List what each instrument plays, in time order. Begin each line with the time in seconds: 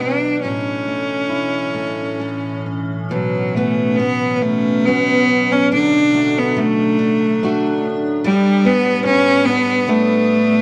Already playing: ambient pad B2 F#3 D4, steel-string acoustic guitar B2 B3 F#4
0.01 cello D4, steel-string acoustic guitar D4
0.43 ambient pad A2 E3 C#4, steel-string acoustic guitar A2, cello C#4
0.87 steel-string acoustic guitar A3
1.29 steel-string acoustic guitar E4
1.74 steel-string acoustic guitar A3
2.19 steel-string acoustic guitar A3 C#4 E4
2.66 steel-string acoustic guitar C#4
3.10 steel-string acoustic guitar B2, ambient pad B2 F#3 C#4, cello F#3
3.55 cello A3, steel-string acoustic guitar B3 C#4 F#4
3.96 cello B3, steel-string acoustic guitar B3
4.36 cello B3
4.42 cello A3, steel-string acoustic guitar C#4
4.85 cello B3, steel-string acoustic guitar B3 C#4 F#4
5.52 cello C#4
5.72 ambient pad A2 D4, steel-string acoustic guitar D3, cello D4
6.14 steel-string acoustic guitar A3 D4 F#4
6.39 cello B3
6.57 steel-string acoustic guitar A3, cello A3
6.99 steel-string acoustic guitar D4
7.43 steel-string acoustic guitar A3 D4 F#4
8.24 steel-string acoustic guitar G3, ambient pad G3 B3, cello G3
8.65 steel-string acoustic guitar B3 A4, cello B3
9.05 steel-string acoustic guitar B3, cello C#4
9.45 cello B3, steel-string acoustic guitar D4
9.88 cello A3, steel-string acoustic guitar B3 D4 A4